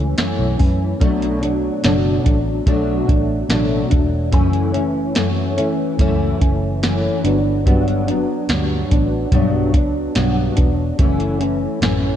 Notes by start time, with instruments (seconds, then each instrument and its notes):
Already playing: fingered electric bass C#2, nylon-string guitar E3 A3 C#4
0.17 nylon-string guitar F#2 E3 A3 C#4, snare, closed hi-hat
0.39 fingered electric bass B1
0.58 fingered electric bass F#2, nylon-string guitar E3 A3 C#4, kick, open hi-hat
1.00 fingered electric bass B1, nylon-string guitar B2 F#3 A3 D4, kick, closed hi-hat
1.22 closed hi-hat
1.41 nylon-string guitar F#3 A3 D4, closed hi-hat
1.83 fingered electric bass F#1, nylon-string guitar B2 F#3 A3 D4, snare, closed hi-hat
2.24 fingered electric bass A1, nylon-string guitar F#3 A3 D4, kick, closed hi-hat
2.66 fingered electric bass B1, nylon-string guitar B2 F#3 A3 D4, kick, closed hi-hat
3.08 fingered electric bass A1, nylon-string guitar F#3 A3 D4, kick, closed hi-hat
3.49 fingered electric bass A1, nylon-string guitar B2 F#3 A3 D4, snare, closed hi-hat
3.90 fingered electric bass E1, nylon-string guitar F#3 A3 D4, kick, closed hi-hat
4.32 fingered electric bass F#1, nylon-string guitar F#2 E3 A3 C#4, kick, closed hi-hat
4.53 closed hi-hat
4.74 nylon-string guitar E3 A3 C#4, closed hi-hat
5.15 nylon-string guitar F#2 E3 A3 C#4, snare, closed hi-hat
5.57 nylon-string guitar E3 A3 C#4, closed hi-hat
5.99 fingered electric bass C#2, nylon-string guitar F#2 E3 A3 C#4, kick, closed hi-hat
6.41 fingered electric bass F#1, nylon-string guitar E3 A3 C#4, kick, closed hi-hat
6.82 nylon-string guitar F#2 E3 A3 C#4, snare, closed hi-hat
7.24 fingered electric bass G1, nylon-string guitar F#3 B3 D4, closed hi-hat
7.66 nylon-string guitar G2 F#3 B3 D4, kick, closed hi-hat
7.88 closed hi-hat
8.07 nylon-string guitar F#3 B3 D4, closed hi-hat
8.49 fingered electric bass D2, nylon-string guitar G2 F#3 B3 D4, snare, closed hi-hat
8.91 fingered electric bass A1, nylon-string guitar F#3 B3 D4, kick, closed hi-hat
9.32 fingered electric bass B1, nylon-string guitar G2 F#3 B3 D4, kick, closed hi-hat
9.73 fingered electric bass C#2, nylon-string guitar F#3 B3 D4, kick, closed hi-hat
10.15 fingered electric bass B1, nylon-string guitar G2 F#3 B3 D4, snare, closed hi-hat
10.56 fingered electric bass E1, nylon-string guitar F#3 B3 D4, kick, closed hi-hat
10.98 fingered electric bass F#1, nylon-string guitar F#2 E3 A3 C#4, kick, closed hi-hat
11.20 closed hi-hat
11.40 nylon-string guitar E3 A3 C#4, closed hi-hat
11.81 fingered electric bass A1, nylon-string guitar F#2 E3 A3 C#4, snare, closed hi-hat